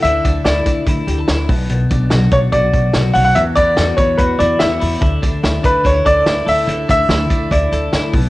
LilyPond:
<<
  \new Staff \with { instrumentName = "Upright piano" } { \time 4/4 \key d \major \tempo 4 = 144 e''4 d''4 r2 | r4. cis''8 d''4. fis''16 fis''16 | e''8 d''4 cis''8 b'8 d''8 e''8. r16 | r4. b'8 cis''8 d''4 e''8~ |
e''8 e''4. d''4. r8 | }
  \new Staff \with { instrumentName = "Clean electric guitar" } { \time 4/4 \key d \major <d e' a'>8 d'8 e'8 d'8 e'8 g'16 a'16 e'8 b,8 | b,8 d'8 fis'8 d'8 fis'4 fis'8 cis''8 | e,8 b8 fis'8 b8 fis'8 e'8 e'16 fis'16 e'8 | d8 d'8 e'8 d'8 d'16 e'16 a'8 e'8 a'8 |
d8 d'8 e'8 d'8 e'8 a'8 e'8 b,8 | }
  \new Staff \with { instrumentName = "Upright bass" } { \clef bass \time 4/4 \key d \major d,8 d,8 d,8 d,8 d,8 d,8 d,8 b,,8~ | b,,8 b,,8 b,,8 b,,8 b,,8 b,,8 b,,8 b,,8 | e,8 e,8 e,8 e,8 e,8 e,8 e,8 e,8 | d,8 d,8 d,8 d,8 d,8 d,8 d,8 d,8 |
d,8 d,8 d,8 d,8 d,8 d,8 d,8 b,,8 | }
  \new DrumStaff \with { instrumentName = "Drums" } \drummode { \time 4/4 hh8 <hh bd>8 <hh sn>8 <hh bd>8 <hh bd>8 hh8 <hh sn>8 <hho bd>8 | hh8 <hh bd>8 <hh sn>8 <hh bd>8 <hh bd>8 <hh bd>8 <hh sn>8 hho8 | hh8 <hh bd>8 <hh sn>8 <hh bd>8 <hh bd>8 hh8 <hh sn>8 hho8 | <hh bd>8 <hh bd>8 <hh sn>8 <hh bd>8 <hh bd>8 <hh bd>8 <hh sn>8 hho8 |
hh8 <hh bd>8 <hh sn>8 <hh bd>8 <hh bd>8 hh8 <hh sn>8 <hho bd>8 | }
>>